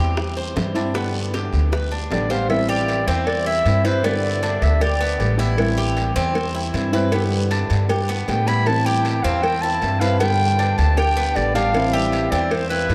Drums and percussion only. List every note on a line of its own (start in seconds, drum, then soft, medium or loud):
0.17 high bongo medium
0.17 long guiro medium
0.37 high bongo soft
0.56 high bongo soft
0.56 low bongo medium
0.56 short guiro medium
0.75 short guiro medium
0.94 high bongo medium
0.94 long guiro medium
1.15 high bongo soft
1.34 high bongo medium
1.34 short guiro medium
1.53 high bongo soft
1.53 short guiro medium
1.72 high bongo medium
1.72 long guiro medium
1.92 high bongo soft
2.11 high bongo soft
2.11 low bongo medium
2.11 short guiro medium
2.30 short guiro medium
2.50 cowbell loud
2.50 long guiro medium
2.88 cowbell medium
2.88 short guiro medium
3.07 cowbell medium
3.07 short guiro medium
3.27 cowbell loud
3.27 long guiro medium
3.66 cowbell medium
3.66 short guiro medium
3.85 cowbell medium
3.85 short guiro medium
4.04 cowbell loud
4.04 long guiro medium
4.43 cowbell medium
4.43 short guiro medium
4.62 cowbell medium
4.62 short guiro medium
4.81 cowbell loud
4.81 long guiro medium
5.20 cowbell medium
5.20 short guiro medium
5.39 cowbell medium
5.39 short guiro medium
5.58 cowbell loud
5.58 long guiro medium
5.97 cowbell medium
5.97 short guiro medium
6.16 cowbell medium
6.16 short guiro medium
6.35 cowbell loud
6.35 long guiro medium
6.74 cowbell medium
6.74 short guiro medium
6.93 cowbell medium
6.93 short guiro medium
7.12 cowbell loud
7.12 long guiro medium
7.51 cowbell medium
7.51 short guiro medium
7.70 cowbell medium
7.70 short guiro medium
7.89 cowbell loud
7.89 long guiro medium
8.28 cowbell medium
8.28 short guiro medium
8.47 cowbell medium
8.47 short guiro medium
8.66 cowbell loud
8.66 long guiro medium
9.05 cowbell medium
9.05 short guiro medium
9.24 cowbell medium
9.24 short guiro medium
9.43 cowbell loud
9.43 long guiro medium
9.82 cowbell medium
9.82 short guiro medium
10.01 cowbell medium
10.01 short guiro medium
10.20 cowbell loud
10.20 long guiro medium
10.59 cowbell medium
10.59 short guiro medium
10.78 cowbell medium
10.78 short guiro medium
10.97 cowbell loud
10.97 long guiro medium
11.36 cowbell medium
11.36 short guiro medium
11.55 cowbell medium
11.55 short guiro medium
11.74 cowbell loud
11.74 long guiro medium
12.12 cowbell medium
12.12 short guiro medium
12.32 cowbell medium
12.32 short guiro medium
12.51 cowbell loud
12.51 long guiro medium
12.89 cowbell medium
12.89 short guiro medium